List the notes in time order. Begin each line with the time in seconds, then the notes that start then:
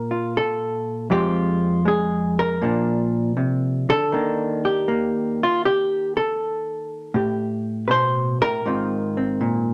Already playing: A#2 A#3 D4 A#4
0.11 F4
0.37 A4
1.10 F2 G#3 C4 F4 G4
1.85 G#3 G#4
2.39 A#4
2.62 A#2 F3 A#3 D4
3.37 C3
3.89 D3 A4
4.12 D#3 A#3 D4
4.65 G4
4.88 A#3
5.43 F4
5.65 G4
6.17 A4
7.14 A2 G4
7.88 B2 B4 C5
8.41 A2 A#4
8.65 G#2 D#3 C4 F4
9.17 C4
9.41 A#2